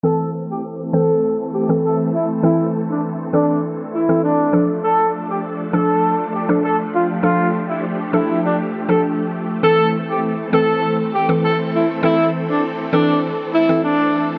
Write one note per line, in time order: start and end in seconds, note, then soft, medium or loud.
0.03 4.49 E3 medium
0.03 0.55 E3 medium
0.03 4.49 A3 medium
0.03 4.49 C4 medium
0.03 0.55 C4 medium
0.03 4.49 A4 medium
0.03 0.29 A4 medium
0.03 0.55 A4 medium
0.50 0.61 G4 medium
0.93 1.36 E3 medium
0.93 1.36 C4 medium
0.93 1.37 A4 medium
0.93 1.37 C5 medium
1.54 1.67 G4 medium
1.69 2.11 E3 medium
1.69 2.11 C4 medium
1.69 2.11 A4 medium
1.83 1.97 A4 medium
2.13 2.27 E4 medium
2.43 2.94 E3 medium
2.43 2.95 C4 medium
2.43 2.69 E4 medium
2.43 2.95 A4 medium
2.89 3.01 D4 medium
3.33 3.76 E3 medium
3.33 3.76 C4 medium
3.33 3.58 D4 medium
3.33 3.77 A4 medium
3.93 4.19 E4 medium
4.09 4.51 E3 medium
4.09 4.51 C4 medium
4.09 4.51 A4 medium
4.23 4.66 D4 medium
4.53 5.49 F3 medium
4.53 9.59 F3 medium
4.53 14.38 A3 medium
4.53 5.50 D4 medium
4.53 9.59 D4 medium
4.53 6.91 A4 medium
4.53 5.50 A4 medium
4.83 5.08 A4 medium
5.29 5.41 G4 medium
5.73 6.16 F3 medium
5.73 6.16 D4 medium
5.73 6.16 A4 medium
5.73 6.17 A4 medium
6.33 6.47 G4 medium
6.49 6.91 F3 medium
6.49 6.91 D4 medium
6.49 6.91 A4 medium
6.63 6.77 A4 medium
6.93 7.07 F4 medium
6.93 9.61 G4 medium
7.23 7.74 F3 medium
7.23 7.74 D4 medium
7.23 7.48 F4 medium
7.23 7.75 A4 loud
7.69 7.81 E4 medium
8.13 8.56 F3 medium
8.13 8.56 D4 medium
8.13 8.38 E4 medium
8.13 8.56 A4 medium
8.44 8.57 D4 medium
8.89 9.31 F3 medium
8.89 9.31 D4 medium
8.89 9.01 A4 medium
8.89 9.31 A4 medium
9.63 10.14 E3 medium
9.63 14.38 E3 medium
9.63 10.14 C4 medium
9.63 14.38 C4 medium
9.63 14.38 A4 medium
9.63 9.88 A4 loud
9.63 10.15 A4 medium
10.09 10.21 G4 medium
10.53 10.96 E3 medium
10.53 10.96 C4 medium
10.53 10.96 A4 medium
11.13 11.27 G4 medium
11.29 11.71 E3 medium
11.29 11.71 C4 medium
11.29 11.71 A4 medium
11.43 11.57 A4 medium
11.73 11.87 E4 medium
12.03 12.54 E3 medium
12.03 12.54 C4 medium
12.03 12.28 E4 medium
12.03 12.55 A4 medium
12.49 12.61 D4 medium
12.93 13.36 E3 medium
12.93 13.36 C4 medium
12.93 13.18 D4 medium
12.93 13.36 A4 medium
13.53 13.79 E4 medium
13.69 14.11 E3 medium
13.69 14.11 C4 medium
13.69 14.11 A4 medium
13.83 14.26 D4 medium